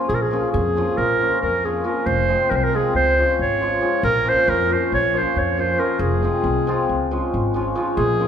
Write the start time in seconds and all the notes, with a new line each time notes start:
Already playing: F3
0.09 A#1 G#4
0.15 A#4
0.22 G#4
0.31 F3 A#3 C#4 F4
0.52 F2 G#4
0.77 F3 A#3 C#4 F4
0.97 A#1 A#4
1.20 F3 A#3 C#4 F4
1.41 F2 A#4
1.64 F3 A#3 C#4 F4 G#4
1.84 F3 A#3 C#4 F4 A#4
2.06 F1 C5
2.29 F3 G#3 C4 F4
2.50 C2 A#4
2.56 C5
2.64 A#4
2.73 F3 G#3 C4 F4 G#4
2.95 C#2 C5
3.18 F3 G#3 C#4 F4
3.39 G#1 C#5
3.61 F3 G#3 C#4 F4
3.81 F3 G#3 C#4 F4
4.03 A#1 A#4
4.25 F3 A#3 C#4 F4
4.29 C5
4.48 F2 A#4
4.69 F3 A#3 C#4 F4
4.73 C5
4.92 A#1 C#5
5.13 F3 A#3 C#4 F4 C5
5.36 F2 C#5
5.57 F3 A#3 C#4 F4 C5
5.78 F3 A#3 C#4 F4 A#4
5.99 F1 G#4
6.22 F3 G#3 C4 F4
6.44 C2
6.67 F3 G#3 C4 F4
6.89 C#2
7.11 F3 G#3 C#4 F4
7.34 G#1
7.54 F3 G#3 C#4 F4
7.75 F3 G#3 C#4 F4
7.97 A#1 G#4
8.19 F3 A#3 C#4 F4